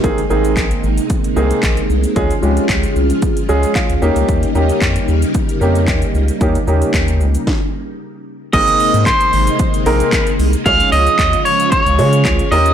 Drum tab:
CC |----------------|----------------|----------------|----------------|
HH |xx-xxx-xxx-xxx-x|xx-xxx-xxx-xxx-x|xx-xxx-xxx-xxx-x|xx-xxx-x--------|
SH |xxxxxxxxxxxxxxxx|xxxxxxxxxxxxxxxx|xxxxxxxxxxxxxxxx|xxxxxxxx--------|
CP |----x-------x---|----x-------x---|----x-------x---|----x-----------|
SD |----------------|----------------|----------------|--------o-------|
BD |o---o---o---o---|o---o---o---o---|o---o---o---o---|o---o---o-------|

CC |x---------------|----------------|
HH |xxoxxxoxxxoxxxox|xxoxxxoxxxoxxxox|
SH |xxxxxxxxxxxxxxxx|xxxxxxxxxxxxxxxx|
CP |----x-------x---|----x-------x---|
SD |----------------|----------------|
BD |o---o---o---o---|o---o---o---o---|